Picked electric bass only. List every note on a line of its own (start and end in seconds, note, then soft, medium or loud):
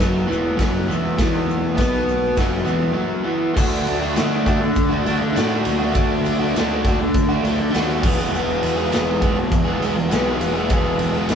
0.00 0.27 F#1 loud
0.30 0.57 E1 loud
0.60 0.87 F#1 medium
0.89 1.16 E1 medium
1.19 1.74 E1 loud
1.79 2.34 B1 loud
2.38 2.65 F#1 medium
2.67 2.95 E1 medium
3.57 3.85 D2 loud
3.88 4.15 D2 medium
4.17 4.73 D2 medium
4.77 5.04 D2 loud
5.06 5.34 D2 medium
5.37 5.64 A2 medium
5.66 5.94 D2 loud
5.95 6.23 D2 medium
6.27 6.54 D2 medium
6.55 7.11 D2 medium
7.15 7.43 D2 medium
7.43 7.71 D2 medium
7.74 8.02 D#2 medium
8.03 8.31 E1 loud
8.32 8.61 E1 loud
8.62 8.91 E1 medium
8.94 9.50 E1 medium
9.52 9.80 E1 loud
9.83 10.10 E1 loud
10.12 10.40 B1 medium
10.41 10.69 E1 medium
10.70 10.99 E1 loud
11.00 11.29 E1 medium
11.30 11.35 E1 loud